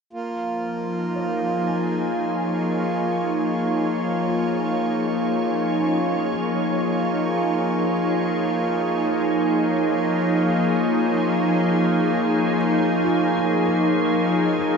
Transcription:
0.11 14.77 F3 medium
0.11 14.77 A#3 medium
0.11 14.77 F4 medium
0.41 14.77 A#3 medium
0.66 14.77 D#4 medium
1.16 3.25 C#5 medium
1.20 14.77 G#4 medium
1.46 3.54 F5 soft
1.67 3.77 G#4 medium
2.00 14.77 C#5 medium
4.26 6.30 F4 soft
5.80 7.90 C#4 medium
6.31 8.42 F4 soft
10.46 12.56 G#4 soft
13.04 14.77 F4 soft
13.35 14.77 G#4 soft
13.66 14.77 A#4 soft
14.59 14.77 D#4 soft

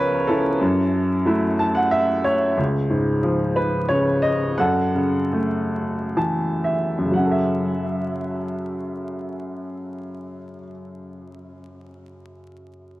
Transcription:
0.00 0.57 C#2 medium
0.00 0.63 F3 soft
0.00 0.63 B3 soft
0.00 0.29 C#4 soft
0.00 0.63 F4 medium
0.00 0.63 G#4 medium
0.00 0.63 A#4 medium
0.00 0.28 B4 medium
0.00 0.63 C#5 medium
0.27 2.22 C#4 soft
0.27 1.25 E4 soft
0.27 2.21 A4 medium
0.61 2.55 F#2 medium
1.25 1.90 F#3 soft
1.25 1.91 A3 soft
1.25 1.91 E4 soft
1.59 1.75 A5 medium
1.75 1.91 F#5 medium
1.91 2.23 E5 medium
2.24 2.55 C#5 medium
2.57 4.54 C#2 soft
2.90 4.19 G#2 soft
3.23 4.54 F3 soft
3.56 3.87 B4 medium
3.89 4.56 C#3 soft
3.89 4.24 C#5 medium
4.22 4.59 D#5 medium
4.58 6.97 F#2 soft
4.58 6.60 A4 soft
4.58 6.59 F#5 medium
4.95 6.60 C#3 soft
5.33 7.10 A3 soft
6.17 7.11 E3 soft
6.17 6.61 A5 soft
6.64 7.11 E5 soft
6.98 10.37 F#2 soft
7.04 10.44 C#3 soft
7.11 10.51 F#3 soft
7.11 10.53 F#5 soft
7.18 10.58 C#4 soft
7.25 10.64 A4 soft
7.32 10.71 E5 soft

